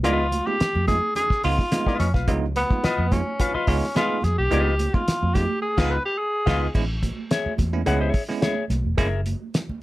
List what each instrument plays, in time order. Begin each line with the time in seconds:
0.03 fingered electric bass C#2, tine electric piano G#3 B3 D#4 F4, clean electric guitar F4 B4 D#5, tenor saxophone F4, closed hi-hat, muted conga, low conga
0.32 closed hi-hat, muted conga, high conga
0.47 tine electric piano G#3 B3 D#4 F4, tenor saxophone G4
0.60 muted fingered electric bass stroke, snare, closed hi-hat
0.75 fingered electric bass F2, high conga
0.87 tine electric piano G#3 B3 D#4 F4, tenor saxophone G#4, kick, snare, closed hi-hat, high conga
1.15 tenor saxophone G#4, closed hi-hat, muted conga, low conga
1.30 muted fingered electric bass stroke, kick, snare
1.44 fingered electric bass C#2, tine electric piano G#3 B3 D#4 F4, tenor saxophone F4, open hi-hat, muted conga
1.59 kick, snare
1.71 tine electric piano G#3 B3 D#4 F4, snare, closed hi-hat, high conga
1.86 clean electric guitar F4 B4 D#5, kick, snare
1.99 fingered electric bass F2, tenor saxophone C#4, snare, closed hi-hat, muted conga, high conga
2.14 fingered electric bass B1, tine electric piano D#4 F4, clean electric guitar F4 B4 F5, kick, snare
2.28 fingered electric bass C#2, tine electric piano G#3 B3 D#4 F4, kick, closed hi-hat, muted conga, low conga
2.56 tenor saxophone B3, tine electric piano D#4 F4, closed hi-hat, high conga
2.71 tine electric piano G#3 B3 D#4 F4, kick
2.83 clean electric guitar F4 B4 D#5, muted fingered electric bass stroke, snare, closed hi-hat
2.98 fingered electric bass F2, high conga
3.11 tine electric piano G#3 B3 D#4 F4, tenor saxophone C#4, kick, snare, closed hi-hat, muted conga, high conga
3.39 clean electric guitar F4 B4 F5, kick, closed hi-hat, low conga
3.54 tenor saxophone F4, clean electric guitar F4 B4 D#5, muted fingered electric bass stroke
3.67 fingered electric bass C#2, tine electric piano G#3 B3 D#4 F4, tenor saxophone C#4, kick, open hi-hat, muted conga
3.84 snare
3.95 tine electric piano G#3 B3 D#4 G#4, clean electric guitar F4 B4 D#5, tenor saxophone F4, snare, closed hi-hat, high conga
4.22 fingered electric bass F2, tenor saxophone G#4, snare, closed hi-hat, high conga
4.38 fingered electric bass B1, tine electric piano D#4 F4, tenor saxophone G4
4.51 fingered electric bass C#2, tine electric piano G#3 B3 D#4 F4, clean electric guitar F4 B4 D#5, closed hi-hat, muted conga, low conga
4.79 tine electric piano D#4 F4, closed hi-hat, high conga
4.94 tine electric piano G#3 B3 D#4 F4, tenor saxophone F4, kick
5.08 muted fingered electric bass stroke, snare, closed hi-hat
5.22 fingered electric bass F2, high conga
5.34 tine electric piano G#3 B3 D#4 F4, tenor saxophone G4, kick, snare, closed hi-hat, high conga
5.62 tenor saxophone G#4
5.77 fingered electric bass C#2, horn section G#3 F4 B4, tine electric piano G#3 B3 D#4 F4, clean electric guitar F4 B4 D#5, kick, snare, crash
5.90 tenor saxophone B4
6.05 tenor saxophone G4
6.18 tenor saxophone G#4
6.46 fingered electric bass C#2, horn section G#3 F4 B4, tine electric piano G#3 B3 D#4 F4, clean electric guitar F4 B4 D#5, kick, snare, crash
6.74 fingered electric bass A1, tine electric piano G#3 B3 C#4 E4, kick, crash, muted conga, low conga
6.90 tine electric piano E4
7.03 kick, closed hi-hat, high conga
7.31 clean electric guitar G#4 C#5 E5, snare, closed hi-hat, muted conga
7.46 muted fingered electric bass stroke, high conga
7.58 fingered electric bass E2, kick, snare, closed hi-hat, muted conga, high conga
7.73 tine electric piano G#3 B3 C#4 E4
7.86 fingered electric bass C#2, tine electric piano G#3 B3 C#4 E4, clean electric guitar G#4 C#5 F#5, closed hi-hat, muted conga, low conga
8.01 clean electric guitar G#4 C#5 E5
8.14 kick, open hi-hat
8.29 tine electric piano G#3 B3 C#4 E4, snare
8.42 clean electric guitar G#4 C#5 E5, snare, closed hi-hat, muted conga, high conga
8.70 fingered electric bass B1, tine electric piano C#4 E4, snare, closed hi-hat, muted conga, high conga
8.85 fingered electric bass E1
8.97 fingered electric bass F#1, tine electric piano G#3 A#3 C#4 E4, clean electric guitar G#4 A#4 E5, kick, closed hi-hat, muted conga, low conga
9.13 tine electric piano C#4 E4
9.26 closed hi-hat, muted conga, high conga
9.54 snare, closed hi-hat, muted conga
9.69 muted fingered electric bass stroke, high conga